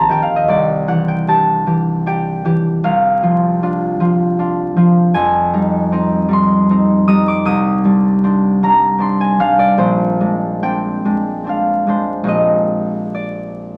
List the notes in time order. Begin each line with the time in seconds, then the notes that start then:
Already playing: A#1 C4 D#5
0.00 A5
0.09 D#3 G4 G5
0.22 F5
0.36 D#5
0.48 C2 D5
0.88 E3 G4 F#5
1.08 G5
1.28 D4 G4 A5
1.66 E3 G4
2.06 D4 G4 G5
2.45 E3 G4
2.84 C2 F5
3.23 F3 F4
3.63 D4 F4
4.00 F3 F4
4.39 D4 F4
4.77 F3 F4
5.14 F2 G#5
5.53 G3 D#4
5.92 C4 D#4
6.29 G3 D#4
6.33 C6
6.70 C4 D#4
7.07 G3 D#4 D#6
7.28 D6
7.45 C2 D#6
7.85 G3 D4
8.24 C4 D4
8.63 G3 D4 A#5
8.98 C4 D4 C6
9.21 G#5
9.39 G3 D4 F5
9.59 D5
9.78 A#1 C5
10.20 G#3 D4
10.63 C4 D4 G5
11.05 G#3 D4
11.44 C4 D4
11.49 F5
11.87 G#3 D4 C5
12.24 A#1 G#3 C4 G4
12.28 D#5
13.15 D5